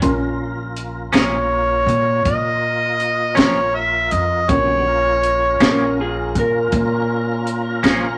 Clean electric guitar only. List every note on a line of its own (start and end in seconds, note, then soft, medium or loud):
1.13 1.36 A#2 soft
1.13 1.36 F3 medium
1.13 1.36 A#3 medium
1.13 1.36 C#4 medium
3.35 3.60 A#2 medium
3.35 3.59 F3 medium
3.35 3.59 A#3 medium
3.35 3.59 C#4 medium
5.60 5.84 A#2 medium
5.60 5.83 F3 medium
5.60 5.83 A#3 medium
5.60 5.83 C#4 soft
7.83 8.07 A#2 medium
7.83 8.07 F3 medium
7.83 8.07 A#3 medium
7.83 8.06 C#4 medium